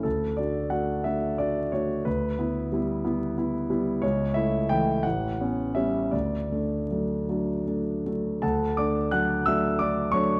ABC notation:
X:1
M:6/8
L:1/8
Q:3/8=59
K:D
V:1 name="Grand piano"
A d f e d c | B4- B z | c e g f2 e | d4- d z |
[Afa] [dd'] [ff'] [ee'] [dd'] [cc'] |]
V:2 name="Grand piano"
D,, [DF] [A,DF] [A,DF] [DF] [A,DF] | D,, [B,E] [G,B,E] [G,B,E] [B,E] [G,B,E] | C,, [A,E] [E,A,E] A,,, [B,C] [G,B,C] | D,, [A,D] [F,A,D] [F,A,D] [A,D] [F,A,D] |
D,, [A,D] [F,A,D] [F,A,D] [A,D] [F,A,D] |]